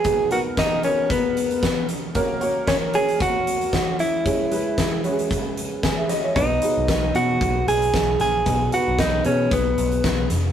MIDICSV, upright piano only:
0, 0, Header, 1, 2, 480
1, 0, Start_track
1, 0, Key_signature, 5, "major"
1, 0, Tempo, 525855
1, 47, Time_signature, 4, 2, 24, 8
1, 9604, End_track
2, 0, Start_track
2, 0, Title_t, "Upright piano"
2, 0, Program_c, 0, 0
2, 0, Control_c, 0, 64, 127
2, 0, Note_on_c, 0, 59, 54
2, 0, Note_on_c, 0, 63, 44
2, 0, Note_on_c, 0, 66, 49
2, 0, Note_on_c, 0, 71, 57
2, 38, Note_off_c, 0, 59, 0
2, 38, Note_on_c, 0, 59, 54
2, 42, Note_off_c, 0, 63, 0
2, 42, Note_on_c, 0, 47, 51
2, 42, Note_on_c, 0, 63, 55
2, 45, Note_off_c, 0, 66, 0
2, 45, Note_on_c, 0, 66, 55
2, 48, Note_on_c, 0, 68, 60
2, 247, Note_off_c, 0, 59, 0
2, 249, Note_off_c, 0, 63, 0
2, 251, Note_off_c, 0, 66, 0
2, 252, Note_off_c, 0, 68, 0
2, 278, Note_on_c, 0, 59, 58
2, 282, Note_on_c, 0, 63, 55
2, 286, Note_on_c, 0, 66, 55
2, 288, Note_on_c, 0, 70, 63
2, 692, Note_off_c, 0, 59, 0
2, 694, Note_off_c, 0, 63, 0
2, 696, Note_off_c, 0, 66, 0
2, 696, Note_off_c, 0, 70, 0
2, 728, Note_off_c, 0, 47, 0
2, 758, Note_on_c, 0, 59, 47
2, 760, Note_on_c, 0, 63, 49
2, 765, Note_on_c, 0, 66, 49
2, 768, Note_on_c, 0, 70, 57
2, 1571, Note_off_c, 0, 59, 0
2, 1571, Note_off_c, 0, 63, 0
2, 1574, Note_off_c, 0, 66, 0
2, 1575, Note_off_c, 0, 70, 0
2, 1959, Note_on_c, 0, 58, 75
2, 1961, Note_on_c, 0, 61, 60
2, 1964, Note_on_c, 0, 66, 65
2, 1968, Note_on_c, 0, 70, 82
2, 1981, Control_c, 0, 64, 0
2, 1983, Note_off_c, 0, 71, 0
2, 2146, Control_c, 0, 64, 127
2, 2167, Note_off_c, 0, 58, 0
2, 2169, Note_off_c, 0, 61, 0
2, 2170, Note_off_c, 0, 66, 0
2, 2172, Note_off_c, 0, 70, 0
2, 2196, Note_on_c, 0, 58, 73
2, 2197, Note_on_c, 0, 61, 69
2, 2201, Note_on_c, 0, 66, 66
2, 2204, Note_on_c, 0, 73, 81
2, 2610, Note_off_c, 0, 58, 0
2, 2611, Note_off_c, 0, 61, 0
2, 2613, Note_off_c, 0, 66, 0
2, 2614, Note_off_c, 0, 73, 0
2, 2674, Note_on_c, 0, 58, 50
2, 2679, Note_on_c, 0, 61, 54
2, 2680, Note_on_c, 0, 66, 48
2, 2685, Note_on_c, 0, 73, 59
2, 3488, Note_off_c, 0, 58, 0
2, 3490, Note_off_c, 0, 61, 0
2, 3491, Note_off_c, 0, 66, 0
2, 3493, Note_off_c, 0, 73, 0
2, 3875, Note_on_c, 0, 56, 55
2, 3877, Note_on_c, 0, 61, 58
2, 3879, Note_on_c, 0, 49, 48
2, 3881, Note_on_c, 0, 64, 49
2, 3886, Note_on_c, 0, 68, 64
2, 3900, Control_c, 0, 64, 0
2, 4085, Note_off_c, 0, 56, 0
2, 4085, Control_c, 0, 64, 127
2, 4086, Note_off_c, 0, 61, 0
2, 4088, Note_off_c, 0, 64, 0
2, 4090, Note_off_c, 0, 68, 0
2, 4114, Note_on_c, 0, 56, 63
2, 4119, Note_on_c, 0, 61, 56
2, 4122, Note_on_c, 0, 64, 55
2, 4124, Note_on_c, 0, 71, 66
2, 4529, Note_off_c, 0, 56, 0
2, 4531, Note_off_c, 0, 61, 0
2, 4533, Note_off_c, 0, 64, 0
2, 4534, Note_off_c, 0, 71, 0
2, 4566, Note_off_c, 0, 49, 0
2, 4597, Note_on_c, 0, 56, 61
2, 4603, Note_on_c, 0, 61, 58
2, 4603, Note_on_c, 0, 64, 59
2, 4608, Note_on_c, 0, 66, 56
2, 4664, Note_on_c, 0, 68, 65
2, 4672, Note_off_c, 0, 66, 0
2, 5320, Note_on_c, 0, 80, 53
2, 5324, Note_off_c, 0, 64, 0
2, 5325, Note_on_c, 0, 71, 49
2, 5355, Note_off_c, 0, 68, 0
2, 5409, Note_off_c, 0, 56, 0
2, 5412, Note_off_c, 0, 61, 0
2, 5450, Note_off_c, 0, 80, 0
2, 5452, Note_on_c, 0, 76, 54
2, 5453, Note_off_c, 0, 71, 0
2, 5459, Note_on_c, 0, 68, 44
2, 5556, Note_off_c, 0, 76, 0
2, 5560, Note_off_c, 0, 68, 0
2, 5562, Note_on_c, 0, 75, 54
2, 5567, Note_on_c, 0, 66, 51
2, 5691, Note_off_c, 0, 75, 0
2, 5694, Note_off_c, 0, 66, 0
2, 5695, Note_on_c, 0, 73, 54
2, 5699, Note_on_c, 0, 64, 48
2, 5794, Note_on_c, 0, 59, 57
2, 5799, Note_on_c, 0, 63, 53
2, 5801, Note_on_c, 0, 47, 49
2, 5801, Note_on_c, 0, 66, 55
2, 5805, Note_on_c, 0, 71, 65
2, 5817, Control_c, 0, 64, 0
2, 5925, Note_off_c, 0, 73, 0
2, 5927, Note_off_c, 0, 64, 0
2, 5961, Control_c, 0, 64, 127
2, 6004, Note_off_c, 0, 59, 0
2, 6006, Note_off_c, 0, 63, 0
2, 6007, Note_off_c, 0, 66, 0
2, 6010, Note_off_c, 0, 71, 0
2, 6038, Note_on_c, 0, 59, 59
2, 6040, Note_on_c, 0, 63, 60
2, 6045, Note_on_c, 0, 66, 58
2, 6048, Note_on_c, 0, 68, 60
2, 6450, Note_off_c, 0, 59, 0
2, 6451, Note_off_c, 0, 63, 0
2, 6454, Note_off_c, 0, 66, 0
2, 6455, Note_off_c, 0, 68, 0
2, 6486, Note_off_c, 0, 47, 0
2, 6520, Note_on_c, 0, 59, 48
2, 6522, Note_on_c, 0, 63, 45
2, 6525, Note_on_c, 0, 66, 52
2, 6529, Note_on_c, 0, 71, 61
2, 7330, Note_off_c, 0, 59, 0
2, 7331, Note_off_c, 0, 63, 0
2, 7332, Note_off_c, 0, 66, 0
2, 7335, Note_off_c, 0, 71, 0
2, 7719, Note_on_c, 0, 59, 62
2, 7723, Note_on_c, 0, 63, 51
2, 7724, Note_on_c, 0, 47, 49
2, 7725, Note_on_c, 0, 66, 56
2, 7729, Note_on_c, 0, 68, 64
2, 7926, Note_off_c, 0, 59, 0
2, 7928, Note_off_c, 0, 63, 0
2, 7929, Note_off_c, 0, 66, 0
2, 7931, Note_off_c, 0, 68, 0
2, 7962, Note_on_c, 0, 59, 61
2, 7965, Note_on_c, 0, 63, 55
2, 7968, Note_on_c, 0, 66, 54
2, 7972, Note_on_c, 0, 71, 71
2, 8372, Note_off_c, 0, 59, 0
2, 8374, Note_off_c, 0, 63, 0
2, 8375, Note_off_c, 0, 66, 0
2, 8377, Note_off_c, 0, 71, 0
2, 8408, Note_off_c, 0, 47, 0
2, 8440, Note_on_c, 0, 59, 53
2, 8445, Note_on_c, 0, 63, 53
2, 8448, Note_on_c, 0, 66, 48
2, 8451, Note_on_c, 0, 68, 60
2, 9250, Note_off_c, 0, 59, 0
2, 9253, Note_off_c, 0, 63, 0
2, 9254, Note_off_c, 0, 66, 0
2, 9256, Note_off_c, 0, 68, 0
2, 9604, End_track
0, 0, End_of_file